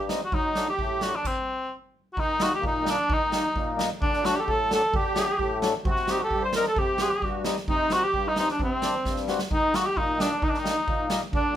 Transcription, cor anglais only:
Already playing: G4
0.25 F#4
0.35 D#4
0.70 G4
1.03 F#4
1.15 D4
1.27 C4
2.13 F#4
2.20 D#4
2.42 F#4
2.55 G4
2.67 D#4
2.90 D4
3.13 D#4
4.02 D4
4.25 F#4
4.36 G4 A4
4.42 G4
4.49 A4
4.73 A4
4.97 G4
5.90 F#4
6.12 G4
6.23 A4
6.44 C5
6.56 A#4
6.67 A4
6.78 G4
7.69 D#4
7.92 F#4
8.04 G4
8.28 D#4
8.39 D#4
8.51 D4
8.64 C4
9.52 D#4
9.75 F#4
9.86 G4
9.97 D#4
10.20 D4
10.43 D#4
10.49 D4
10.58 D#4
11.35 D4

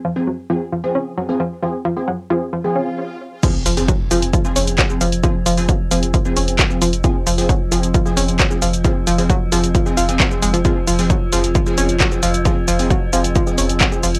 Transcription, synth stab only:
0.16 F3 C4 G#4
0.50 F3 C4 G#4
0.84 F3 C4 G#4
1.29 F3 C4 G#4
1.63 F3 C4 G#4
1.97 F3 C4 G#4
2.30 F3 C4 G#4
2.64 F3 C4 G#4
3.43 F3 C4 G#4
3.77 F3 C4 G#4
4.11 F3 C4 G#4
4.45 F3 C4 G#4
4.90 F3 C4 G#4
5.24 F3 C4 G#4
5.57 F3 C4 G#4
5.91 F3 C4 G#4
6.25 F3 C4 G#4
6.70 F3 C4 G#4
7.04 F3 C4 G#4
7.38 F3 C4 G#4
7.72 F3 C4 G#4
8.06 F3 C4 G#4
8.51 F3 C4 G#4
8.84 F3 C4 G#4
9.18 F3 C4 G#4
9.52 F3 C4 G#4
9.86 F3 C4 G#4
10.09 F3 C4 G#4
10.31 F3 C4 G#4
10.65 F3 C4 G#4
10.99 F3 C4 G#4
11.33 F3 C4 G#4
11.66 F3 C4 G#4
12.12 F3 C4 G#4
12.45 F3 C4 G#4
12.79 F3 C4 G#4
13.13 F3 C4 G#4
13.47 F3 C4 G#4
13.92 F3 C4 G#4

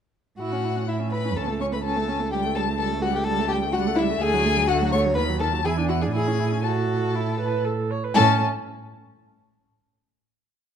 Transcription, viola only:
0.40 E4
0.52 C#4
0.64 E4
0.76 C#4
0.88 E4
1.00 C#4
1.13 E4
1.25 C#4
1.36 C#4
1.48 A3
1.60 C#4
1.72 A3
1.84 C#4
1.97 A3
2.09 C#4
2.20 A3
2.33 G3
2.45 A3
2.56 G3
2.68 A3
2.80 G3
2.92 A3
3.04 G3
3.15 A3
3.28 G3
3.40 A3
3.52 G3
3.63 A3
3.75 G3
3.87 A3
3.98 G3
4.10 A3
4.22 A3
4.33 F#3
4.46 A3
4.57 F#3
4.70 A3
4.82 F#3
4.94 A3
5.06 F#3
5.17 D#3
5.29 F#3
5.41 D#3
5.52 F#3
5.65 E4
5.77 D4
5.89 E4
6.02 D4
6.15 E4
6.27 C#4
6.40 E4
6.52 C#4
6.65 F#4
7.15 E4
7.40 B4
7.65 A4
7.91 C#5
8.04 B4
8.16 C#4

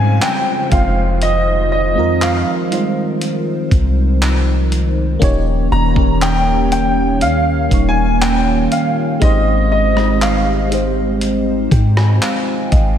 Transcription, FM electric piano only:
Already playing: G3 G#3 C4 C#4 F4
0.69 G#3 C4 D#4 F4
0.74 C5
1.94 G#3 C4 D#4 F4
1.99 A#4
2.69 G3 C4 D#4 F4
2.74 G#3 C5
5.19 A#3 C#4 D#4 G4
5.24 C#5
5.94 A#3 C#4 D#4 G4
5.99 A#4
7.69 G3 A#3 C#4 D#4
7.74 C#5
9.20 G#3 C4 D#4 G4
9.24 C5
9.94 G#3 C4 D#4 G4
9.99 D#5
10.69 G#3 C4 D#4 G4
10.74 C5
11.72 G5
11.97 G#5
12.22 F5
12.71 D#5

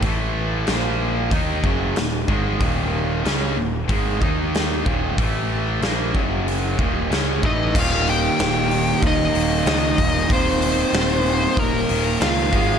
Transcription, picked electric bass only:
0.03 A1
0.69 A#1
1.32 D#2
1.64 F#1
1.97 D#1
2.28 G#1
2.61 D#1
3.25 C#2
3.57 D#1
3.90 G#1
4.22 D#2
4.86 D#1
5.19 A1
5.81 A#1
6.15 F#1
6.80 D#1
7.10 C#2
7.43 A1
8.40 D#1
9.03 D#1
9.35 D#1
9.66 C#2
9.99 D#1
10.30 D#1
10.93 D#1
11.57 D#1
11.89 D#1
12.21 C#2
12.53 G#1

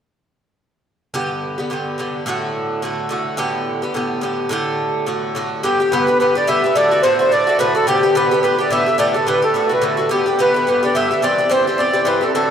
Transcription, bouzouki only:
1.14 G2 D3 B3 G4
1.58 D3 B3 G4
1.70 G2 D3 B3 G4
1.98 G2 D3 B3 G4
2.26 A2 D3 A3 F#4
2.82 A2 D3 A3 F#4
3.09 A2 D3 A3 F#4
3.37 A2 D3 B3 G4
3.82 D3 B3 G4
3.94 A2 D3 B3 G4
4.21 A2 D3 B3 G4
4.49 A2 D3 A3 G4
5.06 A2 D3 A3 F#4
5.35 A2 D3 A3 F#4
5.63 G2 D3 B3 G4
5.80 D3 B3 G4
5.92 G2 D3 B3 G4
6.07 D3 B3 G4
6.20 G2 D3 B3 G4
6.35 D3 B3 G4
6.47 G2 D3 B3 G4
6.64 D3 B3 G4
6.75 A2 D3 A3 F#4
6.91 D3 A3 F#4
7.03 A2 D3 A3 F#4
7.19 D3 A3 F#4
7.32 A2 D3 A3 F#4
7.47 D3 A3 F#4
7.59 A2 D3 A3 F#4
7.75 D3 A3 F#4
7.87 A2 D3 B3 G4
8.03 D3 B3 G4
8.15 A2 D3 B3 G4
8.31 D3 B3 G4
8.43 A2 D3 B3 G4
8.59 D3 B3 G4
8.70 A2 D3 B3 G4
8.86 D3 B3 G4
8.98 A2 D3 A3 G4
9.14 D3 A3 G4
9.27 A2 D3 A3 G4
9.42 D3 A3 G4
9.54 A2 D3 A3 F#4
9.69 D3 A3 F#4
9.82 A2 D3 A3 F#4
9.97 D3 A3 F#4
10.09 G2 D3 B3 G4
10.26 D3 B3 G4
10.39 G2 D3 B3 G4
10.54 D3 B3 G4
10.67 G2 D3 B3 G4
10.83 D3 B3 G4
10.95 G2 D3 B3 G4
11.11 D3 B3 G4
11.22 G2 E3 C4 G4
11.38 E3 C4 G4
11.49 G2 E3 C4 G4
11.67 E3 C4 G4
11.78 G2 E3 C4 G4
11.93 E3 C4 G4
12.05 G2 E3 C4 G4
12.21 E3 C4 G4
12.35 A2 D3 C4 F#4

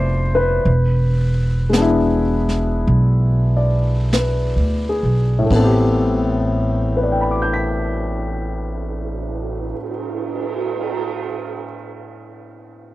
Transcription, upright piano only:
Already playing: B2 A3 D4 E4 F4 C5 D5
0.35 B4
1.69 G#3 B3
1.77 D4
1.81 E4
3.57 D5
4.13 B4
4.89 G#4
5.39 A2
5.45 A3
5.51 B3 A4
5.58 C4
5.64 G4
6.97 B4
7.03 D5
7.12 G5
7.21 B5
7.31 D6
7.42 G6
7.54 B6

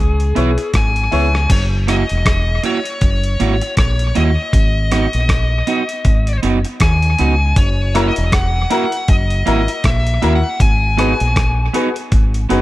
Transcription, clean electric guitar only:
0.35 B3 E4 G#4
0.58 muted clean electric guitar stroke
1.12 B3 E4 G#4
1.34 muted clean electric guitar stroke
1.87 A#3 E4 F#4
2.63 A#3 E4 F#4
3.40 A#3 E4 F#4
3.62 muted clean electric guitar stroke
4.15 A#3 E4 F#4
4.92 B3 D#4 F#4
5.67 B3 D#4 F#4
6.43 B3 D#4 F#4
6.65 muted clean electric guitar stroke
7.19 B3 D#4 F#4
7.95 A#3 E4 F#4
8.70 A#3 E4 F#4
9.46 A#3 E4 F#4
9.68 muted clean electric guitar stroke
10.22 A#3 E4 F#4
10.97 B3 D#4 F#4
11.73 B3 D#4 F#4
12.49 B3 D#4 F#4

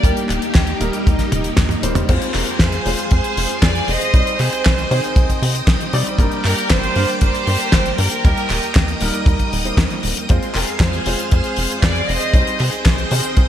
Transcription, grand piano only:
0.04 G3 A#3 D#4 A#4
0.81 G3 A#3 D#4 A#4
1.83 G3 A#3 D#4 C5
2.09 G#3 C4 F4 C5
2.86 G#3 C4 F4 C5
4.14 G3 C4 D#4 C5
4.91 D#3 C4 D#4 C5
5.94 G3 C4 D#4 D5
6.19 G3 A#3 D4 A#4
6.96 G3 A#3 D4 A#4
8.24 G3 A#3 D#4 A#4
9.01 G3 A#3 D#4 A#4
9.65 G3 A#3 D#4 C5
10.29 G#3 C4 F4 C5
11.06 G#3 C4 F4 C5
12.34 G3 C4 D#4 C5
13.11 D#3 C4 D#4 C5

